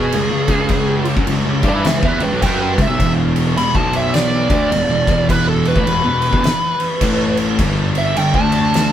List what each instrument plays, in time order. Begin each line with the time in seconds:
Already playing: picked electric bass B2, distorted electric guitar B3 F#4 B4, lead electric guitar G#4
0.12 picked electric bass C#2, distorted electric guitar C#3 G#3, crash
0.31 picked electric bass C#2, distorted electric guitar C#3 G#3
0.48 picked electric bass C#2, distorted electric guitar C#3 G#3 C#4, kick, crash
0.69 kick, crash
1.05 crash
1.16 picked electric bass F#2, distorted electric guitar F#3 C#4, kick
1.27 picked electric bass C#2, distorted electric guitar C#3 G#3, crash
1.45 picked electric bass C#2, distorted electric guitar C#3 G#3
1.62 picked electric bass G2, distorted electric guitar G3 D4 G4, kick, crash
1.68 lead electric guitar B4 E5
1.85 picked electric bass C#2, distorted electric guitar C#3 G#3, lead electric guitar B4 E5, snare, crash
2.03 picked electric bass E2, distorted electric guitar E3 B3, lead electric guitar B4 E5, kick
2.20 picked electric bass C#2, distorted electric guitar C#3 G#3, lead electric guitar B4 G5, crash
2.31 picked electric bass B1, distorted electric guitar B2 F#3
2.41 picked electric bass F#2, distorted electric guitar F#3 C#4 F#4, lead electric guitar B4 G5, kick, crash
2.61 lead electric guitar B4 G5
2.76 picked electric bass C#2, distorted electric guitar C#3 G#3, kick, snare, crash
2.82 lead electric guitar E5
2.88 picked electric bass B1, distorted electric guitar B2 F#3
2.98 picked electric bass E1, distorted electric guitar E2 B2 E3, kick, crash
3.36 crash
3.56 picked electric bass E1, distorted electric guitar E2 B2, lead electric guitar B5, crash
3.74 picked electric bass B1, distorted electric guitar B2 F#3 B3, lead electric guitar A5, kick
3.93 lead electric guitar E5, crash
4.14 lead electric guitar D5, snare, crash
4.49 picked electric bass D2, distorted electric guitar D3 A3 D4, kick, crash
4.72 picked electric bass E1, distorted electric guitar E2 B2, crash
4.89 picked electric bass E1, distorted electric guitar E2 B2
5.07 picked electric bass E1, distorted electric guitar E2 B2 E3, kick, crash
5.29 lead electric guitar B4, kick, crash
5.48 lead electric guitar A4
5.65 lead electric guitar B4, crash
5.76 picked electric bass A1, distorted electric guitar A2 E3, kick
5.87 picked electric bass E1, distorted electric guitar E2 B2, crash
6.05 picked electric bass E1, distorted electric guitar E2 B2
6.22 crash
6.32 picked electric bass E1, distorted electric guitar E2 B2, kick
6.44 muted distorted electric guitar stroke, muted picked electric bass stroke, snare, crash
6.80 crash
7.01 picked electric bass A1, distorted electric guitar A2 E3 A3, kick, crash
7.37 crash
7.59 picked electric bass G1, distorted electric guitar G2 D3 G3, kick, crash
7.95 lead electric guitar E5, crash
8.16 picked electric bass G1, distorted electric guitar G2 D3, lead electric guitar G5, crash
8.34 picked electric bass D2, distorted electric guitar D3 A3 D4, lead electric guitar A5, kick
8.52 crash
8.74 snare, crash